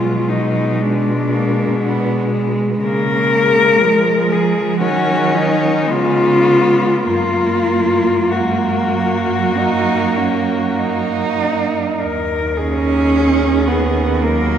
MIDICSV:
0, 0, Header, 1, 5, 480
1, 0, Start_track
1, 0, Key_signature, 6, "major"
1, 0, Tempo, 1025641
1, 851, Tempo, 1000000
1, 1329, Time_signature, 4, 2, 24, 8
1, 2291, Tempo, 1084991
1, 2771, Tempo, 1169591
1, 3251, Tempo, 1237113
1, 5171, Tempo, 1113173
1, 6275, End_track
2, 0, Start_track
2, 0, Title_t, "Cello"
2, 0, Program_c, 0, 42
2, 0, Note_on_c, 0, 65, 47
2, 136, Note_on_c, 0, 63, 39
2, 143, Note_off_c, 0, 65, 0
2, 387, Note_on_c, 0, 62, 53
2, 394, Note_off_c, 0, 63, 0
2, 1098, Note_off_c, 0, 62, 0
2, 1334, Note_on_c, 0, 70, 73
2, 2053, Note_on_c, 0, 68, 51
2, 2060, Note_off_c, 0, 70, 0
2, 2286, Note_off_c, 0, 68, 0
2, 2289, Note_on_c, 0, 66, 56
2, 2528, Note_on_c, 0, 63, 50
2, 2535, Note_off_c, 0, 66, 0
2, 2776, Note_on_c, 0, 65, 62
2, 2782, Note_off_c, 0, 63, 0
2, 3251, Note_off_c, 0, 65, 0
2, 3253, Note_on_c, 0, 65, 58
2, 3735, Note_on_c, 0, 66, 42
2, 3741, Note_off_c, 0, 65, 0
2, 4938, Note_off_c, 0, 66, 0
2, 5165, Note_on_c, 0, 70, 44
2, 5410, Note_on_c, 0, 68, 45
2, 5416, Note_off_c, 0, 70, 0
2, 6127, Note_on_c, 0, 70, 47
2, 6133, Note_off_c, 0, 68, 0
2, 6275, Note_off_c, 0, 70, 0
2, 6275, End_track
3, 0, Start_track
3, 0, Title_t, "Cello"
3, 0, Program_c, 1, 42
3, 0, Note_on_c, 1, 54, 39
3, 377, Note_on_c, 1, 56, 42
3, 384, Note_off_c, 1, 54, 0
3, 621, Note_on_c, 1, 58, 40
3, 628, Note_off_c, 1, 56, 0
3, 851, Note_off_c, 1, 58, 0
3, 854, Note_on_c, 1, 59, 48
3, 1088, Note_off_c, 1, 59, 0
3, 1100, Note_on_c, 1, 56, 38
3, 1343, Note_on_c, 1, 58, 48
3, 1350, Note_off_c, 1, 56, 0
3, 1822, Note_on_c, 1, 56, 46
3, 1829, Note_off_c, 1, 58, 0
3, 2056, Note_on_c, 1, 53, 42
3, 2063, Note_off_c, 1, 56, 0
3, 2304, Note_on_c, 1, 54, 49
3, 2310, Note_off_c, 1, 53, 0
3, 2773, Note_off_c, 1, 54, 0
3, 2776, Note_on_c, 1, 56, 48
3, 3243, Note_off_c, 1, 56, 0
3, 3248, Note_on_c, 1, 58, 41
3, 3672, Note_off_c, 1, 58, 0
3, 3729, Note_on_c, 1, 56, 40
3, 3975, Note_on_c, 1, 54, 36
3, 3981, Note_off_c, 1, 56, 0
3, 4221, Note_on_c, 1, 63, 50
3, 4227, Note_off_c, 1, 54, 0
3, 4450, Note_on_c, 1, 61, 40
3, 4456, Note_off_c, 1, 63, 0
3, 4692, Note_on_c, 1, 63, 45
3, 4698, Note_off_c, 1, 61, 0
3, 5173, Note_off_c, 1, 63, 0
3, 5420, Note_on_c, 1, 61, 62
3, 5885, Note_on_c, 1, 59, 52
3, 5891, Note_off_c, 1, 61, 0
3, 6121, Note_on_c, 1, 58, 68
3, 6128, Note_off_c, 1, 59, 0
3, 6275, Note_off_c, 1, 58, 0
3, 6275, End_track
4, 0, Start_track
4, 0, Title_t, "Cello"
4, 0, Program_c, 2, 42
4, 0, Note_on_c, 2, 56, 31
4, 354, Note_off_c, 2, 56, 0
4, 372, Note_on_c, 2, 56, 36
4, 1309, Note_off_c, 2, 56, 0
4, 1325, Note_on_c, 2, 56, 39
4, 2285, Note_on_c, 2, 61, 38
4, 2292, Note_off_c, 2, 56, 0
4, 2765, Note_on_c, 2, 59, 41
4, 2771, Note_off_c, 2, 61, 0
4, 3241, Note_on_c, 2, 58, 35
4, 3247, Note_off_c, 2, 59, 0
4, 3720, Note_off_c, 2, 58, 0
4, 3722, Note_on_c, 2, 58, 40
4, 5068, Note_off_c, 2, 58, 0
4, 6126, Note_on_c, 2, 54, 51
4, 6275, Note_off_c, 2, 54, 0
4, 6275, End_track
5, 0, Start_track
5, 0, Title_t, "Cello"
5, 0, Program_c, 3, 42
5, 0, Note_on_c, 3, 47, 33
5, 1326, Note_off_c, 3, 47, 0
5, 1329, Note_on_c, 3, 49, 39
5, 1798, Note_on_c, 3, 53, 37
5, 1805, Note_off_c, 3, 49, 0
5, 2287, Note_on_c, 3, 51, 42
5, 2294, Note_off_c, 3, 53, 0
5, 2769, Note_on_c, 3, 49, 43
5, 2776, Note_off_c, 3, 51, 0
5, 3246, Note_on_c, 3, 42, 34
5, 3252, Note_off_c, 3, 49, 0
5, 5086, Note_off_c, 3, 42, 0
5, 5173, Note_on_c, 3, 39, 46
5, 6275, Note_off_c, 3, 39, 0
5, 6275, End_track
0, 0, End_of_file